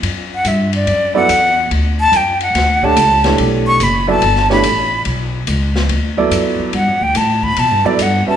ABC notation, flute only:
X:1
M:4/4
L:1/8
Q:"Swing" 1/4=143
K:Glyd
V:1 name="Flute"
z f e d2 f3 | z a g f2 a3 | z c' b a2 b3 | z8 |
f g a b a d f a |]